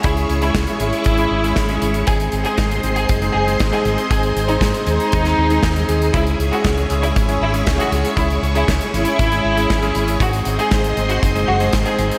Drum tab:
HH |xxxxxxxxxx-xxxxx|xxxxxxxxxx-xxxxx|xxxxxxxxxx-xxxxx|xxxxxxxxxx-xxxxx|
SD |----o-------o---|----o-------o---|----o----o--o---|----o-------o---|
BD |o---o---o---o---|o---o---o---o---|o---o---o---o---|o---o---o---o---|

HH |xxxxxxxxxx-xxxxx|xxxxxxxxxx-xxxxx|
SD |----o-------o---|----o-------o---|
BD |o---o---o---o---|o---o---o---o---|